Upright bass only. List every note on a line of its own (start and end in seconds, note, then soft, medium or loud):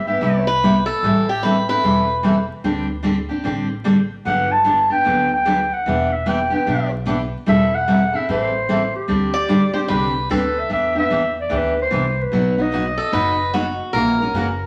0.21 0.86 C2 medium
1.03 1.67 A1 medium
1.84 2.48 E1 medium
2.64 3.28 D2 medium
3.46 4.10 A1 medium
4.25 4.90 G1 medium
5.07 5.71 D2 medium
5.87 6.51 E1 medium
6.67 7.31 B1 medium
7.48 8.12 E1 medium
8.28 8.93 A1 medium
9.09 9.73 D2 medium
9.90 10.24 C2 medium
10.30 10.65 D2 medium
10.70 11.02 E2 medium
11.11 11.45 E2 medium
11.51 11.86 D2 medium
11.91 12.26 C2 medium
12.32 12.96 B1 medium
13.13 13.77 F#1 medium
13.93 14.25 A#1 medium
14.33 14.66 F#1 medium